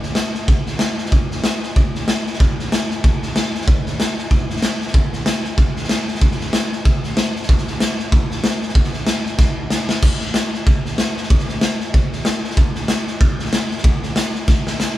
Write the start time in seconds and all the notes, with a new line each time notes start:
0.03 snare
0.15 snare, hi-hat pedal
0.34 snare
0.48 kick, snare
0.66 snare
0.79 snare, hi-hat pedal
0.98 snare
1.06 snare
1.12 kick, snare
1.31 snare
1.44 snare, hi-hat pedal
1.63 snare
1.76 kick, snare
1.95 snare
2.08 snare, hi-hat pedal
2.27 snare
2.34 snare
2.40 kick, snare
2.59 snare
2.72 snare, hi-hat pedal
2.90 snare
3.04 kick, snare
3.23 snare
3.36 snare, hi-hat pedal
3.55 snare
3.61 snare
3.68 kick, snare
3.86 snare
4.00 snare, hi-hat pedal
4.18 snare
4.31 kick, snare
4.50 snare
4.56 snare
4.62 snare, hi-hat pedal
4.81 snare
4.87 snare
4.94 kick, snare
5.13 snare
5.26 snare, hi-hat pedal
5.44 snare
5.58 kick, snare
5.76 snare
5.84 snare
5.89 snare, hi-hat pedal
6.08 snare
6.15 snare
6.21 kick, snare
6.31 snare
6.41 snare
6.53 snare, hi-hat pedal
6.72 snare
6.85 kick, snare
7.04 snare
7.17 snare, hi-hat pedal
7.36 snare
7.43 snare
7.49 kick, snare
7.58 snare
7.67 snare
7.80 snare, hi-hat pedal
7.99 snare
8.12 kick, snare
8.31 snare
8.44 snare, hi-hat pedal
8.62 snare
8.69 snare
8.75 kick, snare
8.84 snare
8.94 snare
9.07 snare, hi-hat pedal
9.26 snare
9.38 kick, snare
9.70 snare, hi-hat pedal
9.89 snare
10.02 kick, snare, crash
10.21 snare
10.34 snare, hi-hat pedal
10.54 snare
10.66 kick, snare
10.85 snare
10.98 snare, hi-hat pedal
11.17 snare
11.23 snare
11.30 kick, snare
11.39 snare
11.49 snare
11.61 snare, hi-hat pedal
11.80 snare
11.94 kick, snare
12.13 snare
12.25 snare, hi-hat pedal
12.44 snare
12.50 snare
12.57 kick, snare
12.75 snare
12.88 snare, hi-hat pedal
13.07 snare
13.20 kick, snare
13.39 snare
13.46 snare
13.53 snare, hi-hat pedal
13.71 snare
13.78 snare
13.84 kick, snare
14.03 snare
14.16 snare, hi-hat pedal
14.35 snare
14.48 kick, snare
14.67 snare
14.80 snare, hi-hat pedal